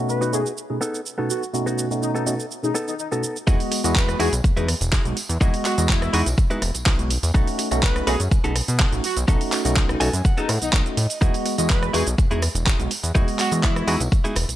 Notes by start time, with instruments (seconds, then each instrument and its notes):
Already playing: tine electric piano B2 A3 C#4 D#4 F#4
0.08 analog polysynth B4, muted clean electric guitar stroke, shaker
0.21 clean electric guitar B3 D#4 F#4, shaker
0.33 tine electric piano B2 A3 C#4 D#4 F#4, analog polysynth G#4, shaker
0.46 shaker
0.58 shaker
0.69 tine electric piano B2 A3 C#4 D#4 G#4
0.81 clean electric guitar B3 D#4 A4, shaker
0.95 shaker
1.06 shaker
1.18 tine electric piano B2 A3 C#4 D#4 F#4, clean electric guitar B3 D#4 A4
1.30 analog polysynth F#4, shaker
1.43 shaker
1.53 tine electric piano B2 A3 C#4 D#4 F#4, shaker
1.66 clean electric guitar B3 D#4 F#4, shaker
1.79 shaker
1.90 tine electric piano B2 A3 C#4 D#4 F#4, shaker
2.02 analog polysynth D#4, muted clean electric guitar stroke, shaker
2.15 clean electric guitar B3 D#4 A4, analog polysynth D#4, shaker
2.26 tine electric piano B2 A3 C#4 D#4 F#4, shaker
2.40 shaker
2.51 shaker
2.63 tine electric piano B2 A3 C#4 D#4 G#4, analog polysynth D#4, shaker
2.74 clean electric guitar B3 D#4 A4, shaker
2.87 analog polysynth D#4, shaker
2.99 analog polysynth D#4, shaker
3.11 tine electric piano B2 A3 C#4 D#4 F#4, clean electric guitar B3 D#4 A4, shaker
3.24 shaker
3.36 shaker
3.47 analog synth bass E2, tine electric piano G#3 B3 F#4 D#5, clean electric guitar D#4 E4 F#4 G#4, kick, tambourine, shaker
3.60 open hi-hat, shaker
3.72 muted clean electric guitar stroke, open hi-hat, tambourine
3.84 analog synth bass E2, tine electric piano G#3 B3 F#4 D#5, muted clean electric guitar stroke, closed hi-hat, tambourine, shaker
3.95 analog polysynth B4, kick, clap, shaker
4.09 cross-stick, closed hi-hat, shaker
4.19 analog synth bass E2, tine electric piano G#3 B3 D#4 F#4, clean electric guitar D#4 E4 F#4 G#4, analog polysynth G#4, open hi-hat, tambourine
4.33 analog synth bass B1, closed hi-hat, tambourine, shaker
4.44 analog synth bass E2, kick, tambourine, shaker
4.57 analog synth bass E2, tine electric piano G#3 B3 D#4 G#4, clean electric guitar D#4 E4 F#4 B4, closed hi-hat, shaker
4.68 cross-stick, open hi-hat, tambourine
4.81 analog synth bass E1, muted clean electric guitar stroke, closed hi-hat, tambourine, shaker
4.92 clean electric guitar D#4 E4 F#4 G#4, kick, clap, tambourine, shaker
5.05 analog synth bass B1, tine electric piano G#3 B3 D#4 F#4, closed hi-hat, shaker
5.17 muted clean electric guitar stroke, open hi-hat, tambourine
5.29 analog synth bass E2, closed hi-hat, tambourine, shaker
5.41 analog synth bass E2, tine electric piano G#3 B3 F#4 D#5, clean electric guitar D#4 E4 F#4 G#4, kick, tambourine, shaker
5.54 open hi-hat, shaker
5.65 analog polysynth F#4, muted clean electric guitar stroke, clap, open hi-hat, tambourine
5.78 analog synth bass E2, tine electric piano G#3 B3 F#4 D#5, muted clean electric guitar stroke, closed hi-hat, tambourine, shaker
5.89 analog polysynth E4, kick, clap, shaker
6.02 cross-stick, closed hi-hat, shaker
6.13 analog synth bass E2, tine electric piano G#3 B3 D#4 F#4, clean electric guitar D#4 E4 F#4 G#4, open hi-hat, tambourine
6.26 analog synth bass B1, closed hi-hat, tambourine, shaker
6.38 muted clean electric guitar stroke, kick, tambourine, shaker
6.50 tine electric piano G#3 B3 D#4 G#4, clean electric guitar D#4 E4 F#4 B4, closed hi-hat, shaker
6.62 analog synth bass E1, cross-stick, open hi-hat, tambourine
6.74 analog synth bass B1, muted clean electric guitar stroke, closed hi-hat, tambourine, shaker
6.86 analog synth bass B1, clean electric guitar D#4 E4 F#4 B4, kick, clap, tambourine, shaker
6.99 tine electric piano G#3 B3 D#4 F#4, closed hi-hat, shaker
7.10 muted clean electric guitar stroke, open hi-hat, tambourine
7.23 analog synth bass E2, open hi-hat, tambourine, shaker
7.34 analog synth bass B1, tine electric piano A3 C#4 D#4 F#4, clean electric guitar B3 D#4 F#4 A4, kick, shaker
7.47 open hi-hat, shaker
7.59 muted clean electric guitar stroke, open hi-hat, tambourine
7.71 analog synth bass B1, tine electric piano A3 C#4 D#4 F#4, muted clean electric guitar stroke, closed hi-hat, tambourine, shaker
7.83 analog polysynth B4, kick, clap, tambourine, shaker
7.96 cross-stick, closed hi-hat, shaker
8.07 analog synth bass B1, tine electric piano A3 C#4 D#4 F#4, clean electric guitar B3 D#4 F#4 B4, analog polysynth G#4, open hi-hat, tambourine
8.20 analog synth bass F#2, closed hi-hat, tambourine, shaker
8.31 analog synth bass B1, muted clean electric guitar stroke, kick, tambourine, shaker
8.44 analog synth bass B1, tine electric piano A3 C#4 D#4 G#4, clean electric guitar B3 D#4 F#4 A4, closed hi-hat, shaker
8.56 cross-stick, open hi-hat, tambourine
8.68 analog synth bass B2, muted clean electric guitar stroke, closed hi-hat, tambourine, shaker
8.79 clean electric guitar B3 D#4 F#4 A4, kick, clap, shaker
8.92 analog synth bass A1, tine electric piano A3 C#4 D#4 F#4, closed hi-hat, shaker
9.04 analog polysynth F#4, muted clean electric guitar stroke, open hi-hat, tambourine
9.16 analog synth bass B1, closed hi-hat, tambourine, shaker
9.28 analog synth bass B1, tine electric piano A3 C#4 D#4 F#4, clean electric guitar B3 D#4 F#4 A4, kick, tambourine, shaker
9.41 open hi-hat, shaker
9.52 muted clean electric guitar stroke, clap, open hi-hat, tambourine
9.65 analog synth bass B1, tine electric piano A3 C#4 D#4 F#4, muted clean electric guitar stroke, closed hi-hat, tambourine, shaker
9.76 analog polysynth D#4, kick, clap, shaker
9.89 analog polysynth D#4, cross-stick, closed hi-hat, shaker
10.00 analog synth bass B1, tine electric piano A3 C#4 D#4 F#4, clean electric guitar B3 D#4 F#4 A4 G#5, open hi-hat, tambourine
10.13 analog synth bass F#2, closed hi-hat, tambourine, shaker
10.24 clean electric guitar F#5, muted clean electric guitar stroke, kick, tambourine, shaker
10.37 tine electric piano A3 C#4 D#4 G#4, clean electric guitar B3 D#4 F#4 A4, analog polysynth D#4, closed hi-hat, shaker
10.49 analog synth bass A2, cross-stick, open hi-hat, tambourine
10.61 analog synth bass B1, analog polysynth D#4, muted clean electric guitar stroke, closed hi-hat, tambourine, shaker
10.72 analog synth bass B1, clean electric guitar B3 D#4 F#4 A4 D#5, analog polysynth D#4, kick, clap, shaker
10.86 tine electric piano A3 C#4 D#4 F#4, closed hi-hat, shaker
10.97 analog synth bass A2, muted clean electric guitar stroke, open hi-hat, tambourine
11.10 open hi-hat, tambourine, shaker
11.21 analog synth bass E2, tine electric piano G#3 B3 F#4 D#5, clean electric guitar D#4 E4 F#4 G#4, kick, tambourine, shaker
11.34 open hi-hat, shaker
11.46 muted clean electric guitar stroke, open hi-hat, tambourine
11.58 analog synth bass E2, tine electric piano G#3 B3 F#4 D#5, muted clean electric guitar stroke, closed hi-hat, tambourine, shaker
11.69 analog polysynth B4, kick, clap, shaker
11.83 cross-stick, closed hi-hat, shaker
11.93 analog synth bass E2, tine electric piano G#3 B3 D#4 F#4, clean electric guitar D#4 E4 F#4 B4, analog polysynth G#4, open hi-hat, tambourine
12.07 analog synth bass B1, closed hi-hat, tambourine, shaker
12.18 analog synth bass E2, muted clean electric guitar stroke, kick, tambourine, shaker
12.31 analog synth bass E2, tine electric piano G#3 B3 D#4 G#4, clean electric guitar D#4 E4 F#4 G#4, closed hi-hat, shaker
12.42 cross-stick, open hi-hat, tambourine
12.55 analog synth bass E1, muted clean electric guitar stroke, closed hi-hat, tambourine, shaker
12.66 clean electric guitar D#4 E4 F#4 G#4, kick, clap, tambourine, shaker
12.79 analog synth bass B1, tine electric piano G#3 B3 D#4 F#4, closed hi-hat, shaker
12.91 muted clean electric guitar stroke, open hi-hat, tambourine
13.03 analog synth bass E2, closed hi-hat, tambourine, shaker
13.15 analog synth bass E2, tine electric piano G#3 B3 F#4 D#5, clean electric guitar D#4 E4 F#4 G#4, kick, tambourine, shaker
13.28 open hi-hat, shaker
13.39 analog polysynth F#4, muted clean electric guitar stroke, clap, open hi-hat, tambourine
13.51 analog synth bass E2, tine electric piano G#3 B3 F#4 D#5, muted clean electric guitar stroke, closed hi-hat, tambourine, shaker
13.63 analog polysynth E4, kick, clap, tambourine, shaker
13.76 cross-stick, closed hi-hat, shaker
13.87 analog synth bass E2, tine electric piano G#3 B3 D#4 F#4, clean electric guitar D#4 E4 F#4 G#4, open hi-hat, tambourine
14.00 analog synth bass B1, closed hi-hat, tambourine, shaker
14.12 muted clean electric guitar stroke, kick, tambourine, shaker
14.24 tine electric piano G#3 B3 D#4 G#4, clean electric guitar D#4 E4 F#4 G#4, closed hi-hat, shaker
14.36 analog synth bass E1, cross-stick, open hi-hat, tambourine
14.49 analog synth bass B1, muted clean electric guitar stroke, closed hi-hat, tambourine, shaker